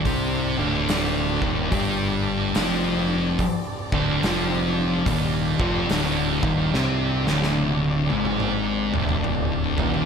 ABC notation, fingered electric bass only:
X:1
M:4/4
L:1/8
Q:"Swing" 1/4=72
K:Dphr
V:1 name="Fingered electric bass" clef=bass
C,, D,,,2 E,,, G,,,2 F,,,2 | z D,,, F,,,2 E,,, F,,, D,,, E,,, | C,, D,,,2 ^G,,,2 D,,,2 E,,, |]